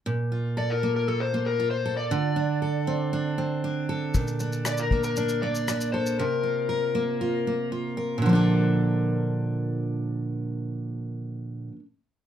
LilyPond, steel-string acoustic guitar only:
\new Staff \with { instrumentName = "Steel-string acoustic guitar" } { \time 4/4 \key bes \major \tempo 4 = 118 bes,8 f'8 a'8 bes8 f'8 bes8 f'8 a'8 | d8 d'8 a'8 c'8 d'8 c'8 d'8 a'8 | bes,8 d'4 bes8 d'8 bes8 d'8 a'8 | c8 f'8 bes'8 bes8 f'8 bes8 f'8 bes'8 |
<bes, d f bes d' a'>1~ | <bes, d f bes d' a'>1 | }